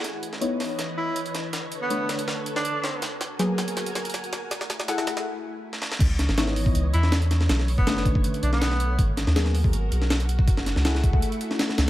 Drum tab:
CC |--------------------------------|--------------------------------|--------------------------------|--------------------------------|
HH |x---x---x---o---x-------x-x-x---|x---x---x---x-x-----x---x-------|x---x---x---x-x-x-x-x-xxx-x-x---|x---x---x---x-------------------|
SD |o-----o-----o---o-----------o---|o-----------o---o-----o-----o---|o---o---o---o---o---o---o---o---|o-o-o-o-o-o-o-o-----------o-o-o-|
BD |--------------------------------|--------------------------------|--------------------------------|--------------------------------|

CC |x-------------------------------|--------------------------------|--------------------------------|--------------------------------|
HH |x---x---x---o---x---x---x-x-x---|x---o---x---x---x-x-x---x---x---|x---x---x---o---x---x---x-x-x---|x---x---x---x---x-x-x---x---x---|
SD |----o-o-o-o-----------o-o---o-o-|o-o-----o-o-----------o-o-o-----|----o-o-o-o-----------o-o-------|--o-o-o-o-o-----------o-o-o-o---|
BD |o-------------o-----------------|------o-----o-o-----------------|o-------------o---------------o-|o-----------o-o-----------------|